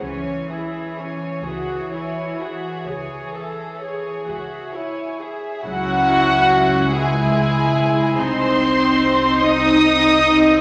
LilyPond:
<<
  \new Staff \with { instrumentName = "Violin section" } { \time 12/8 \key cis \minor \tempo 4. = 46 gis''8 e''8 gis''8 e''8 gis''8 e''8 gis''8 e''8 gis''8 e''8 gis''8 e''8 | fis''4. gis''4. c'''4. ees'''4. | }
  \new Staff \with { instrumentName = "Violin section" } { \time 12/8 \key cis \minor cis''8 gis'8 cis''8 gis'8 cis''8 gis'8 cis''8 gis'8 cis''8 gis'8 cis''8 gis'8 | fis'4. gis'4. c''4. ees''4. | }
  \new Staff \with { instrumentName = "Viola section" } { \time 12/8 \key cis \minor << { r4. fis'8 e'8 fis'8 gis'8 a'8 gis'8 fis'8 e'8 gis'8 | e'2. ees'2. | } \\ { cis'8 e'8 cis'8 r1 r8 | cis'4. e'4. ees'4. c'8 c'8 c'8 | } >> }
  \new Staff \with { instrumentName = "Cello section" } { \clef bass \time 12/8 \key cis \minor e1~ e8 r4. | fis4. gis4. c'4. ees'4. | }
  \new Staff \with { instrumentName = "Double bass section" } { \clef bass \time 12/8 \key cis \minor cis,4. cis,4. cis,4. cis,4. | cis,2. c,2. | }
>>